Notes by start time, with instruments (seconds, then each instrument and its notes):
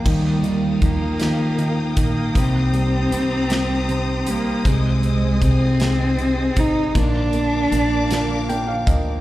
0.05 upright bass D#2, steel-string acoustic guitar D#3 F3 A#3 D#4 G4, felt piano D#3, cello G3, string section A#4 F5 G5 D#6, kick, crash
0.43 felt piano D#3, closed hi-hat
0.81 upright bass D#2, felt piano D#3, steel-string acoustic guitar F3 A#3 D#4 G4, cello A#3, kick, closed hi-hat
1.19 felt piano D#3, steel-string acoustic guitar D#3 F3 A#3 D#4 G4, snare, closed hi-hat
1.58 felt piano D#3, closed hi-hat
1.96 upright bass A#1, felt piano D#3, steel-string acoustic guitar A#3 D#4 G4, cello A#3, kick, closed hi-hat
2.35 upright bass C2, felt piano C3, steel-string acoustic guitar C3 G3 A#3 D#4 G4, cello C4, string section C5 A#5, kick, closed hi-hat
2.73 felt piano G3, closed hi-hat
3.11 upright bass C2, felt piano C3, steel-string acoustic guitar G3 A#3 D#4 G4, closed hi-hat
3.49 steel-string acoustic guitar C3 G3 A#3 D#4 G4, felt piano G3, snare, closed hi-hat
3.89 felt piano C3, closed hi-hat
4.26 upright bass A#1, felt piano G3, steel-string acoustic guitar A#3 D#4 G4, cello A#3, closed hi-hat
4.65 upright bass C2, steel-string acoustic guitar C3 G#3 C4 D#4 G#4, felt piano C3, cello G#3, string section D#5 G#5, kick, closed hi-hat
5.03 felt piano C3, closed hi-hat
5.41 upright bass C2, felt piano C3, steel-string acoustic guitar G#3 C4 D#4 G#4, cello C4, kick, closed hi-hat
5.80 felt piano C3, steel-string acoustic guitar C3 G#3 C4 D#4 G#4, snare, closed hi-hat
6.18 felt piano C3, closed hi-hat
6.56 upright bass G#1, felt piano C3, steel-string acoustic guitar C4 D#4 G#4, cello D#4, kick, closed hi-hat
6.95 upright bass A#1, steel-string acoustic guitar A#2 D3 F3 A#3 D4 A#4, felt piano A#3, cello D4, string section A#4 F5 D6, kick, closed hi-hat
7.33 felt piano A#3, closed hi-hat
7.72 upright bass A#1, steel-string acoustic guitar F3 A#3 D4 A#4, felt piano A#3, closed hi-hat
8.10 steel-string acoustic guitar A#2 D3 F3 A#3 D4 A#4, felt piano A#3, snare, closed hi-hat
8.49 felt piano A#3 G5, closed hi-hat
8.67 felt piano F5
8.86 upright bass D2, steel-string acoustic guitar F3 A#3 D4 A#4, felt piano A#3 D#5, kick, closed hi-hat